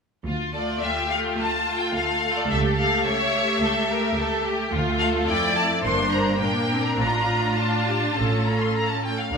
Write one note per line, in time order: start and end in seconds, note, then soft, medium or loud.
0.25 0.73 D2 soft
0.25 0.52 F4 soft
0.53 1.09 A3 soft
0.53 1.08 F4 soft
0.53 0.61 A4 soft
0.53 0.80 D5 soft
0.81 1.29 D2 soft
0.81 1.38 G4 soft
0.81 1.10 E5 soft
1.10 1.66 A3 soft
1.10 1.66 F4 soft
1.10 1.18 F5 soft
1.38 1.86 D2 soft
1.38 1.96 F4 soft
1.38 1.81 A5 medium
1.67 2.23 A3 soft
1.67 2.23 F4 soft
1.80 1.95 G5 medium
1.94 2.42 D2 soft
1.94 3.06 A4 soft
1.94 2.37 F5 soft
2.24 2.50 A3 soft
2.24 2.52 F4 soft
2.38 2.52 D5 soft
2.51 2.98 C#2 soft
2.51 2.98 C#2 medium
2.51 2.78 A3 soft
2.51 2.78 G4 soft
2.51 2.59 E5 medium
2.79 3.33 A3 soft
2.79 3.33 G4 soft
2.79 3.06 F5 medium
3.06 3.53 C#2 soft
3.06 3.63 C#5 medium
3.06 4.41 E5 medium
3.34 3.88 A3 soft
3.34 3.88 G4 soft
3.62 4.08 C#2 medium
3.62 3.89 A4 soft
3.89 4.43 A3 soft
3.89 4.42 G4 soft
3.89 4.18 A#4 soft
4.16 4.63 C#2 soft
4.16 4.45 A4 soft
4.44 4.71 A3 soft
4.44 4.71 G4 soft
4.44 4.72 G4 soft
4.71 5.24 D2 soft
4.71 5.80 A3 soft
4.71 5.24 F4 soft
4.71 5.00 F4 soft
4.99 5.28 A4 soft
4.99 5.07 F5 medium
5.27 5.84 F2 soft
5.27 5.84 E4 soft
5.27 5.84 D5 medium
5.27 5.56 G5 medium
5.56 5.64 A5 medium
5.83 6.37 G1 soft
5.83 6.39 G2 soft
5.83 6.39 A#3 soft
5.83 6.39 D4 soft
5.83 6.39 C5 soft
5.83 6.12 C6 medium
6.12 6.41 A#5 soft
6.39 7.00 A#2 soft
6.39 6.69 A#3 soft
6.39 6.98 D4 soft
6.39 6.99 A#4 soft
6.39 6.83 G5 soft
6.70 7.00 C4 soft
6.84 6.98 A#5 soft
6.98 7.55 A1 soft
6.98 8.14 A2 soft
6.98 7.57 D4 soft
6.98 9.04 F4 soft
6.98 7.57 F4 soft
6.98 7.57 A#5 medium
7.58 8.16 D4 soft
7.58 7.87 F4 soft
7.58 8.46 A5 soft
7.87 8.17 G4 soft
8.16 8.71 A1 soft
8.16 9.10 A2 soft
8.16 9.11 C#4 soft
8.16 9.13 A4 soft
8.45 8.60 A#5 soft
8.62 8.76 C6 soft
8.77 8.90 A#5 soft
8.90 9.04 A5 soft
9.06 9.19 G5 soft
9.21 9.34 F5 soft
9.32 9.38 D2 soft
9.32 9.38 D3 soft
9.32 9.38 D4 soft
9.32 9.38 A#4 soft
9.32 9.38 D5 soft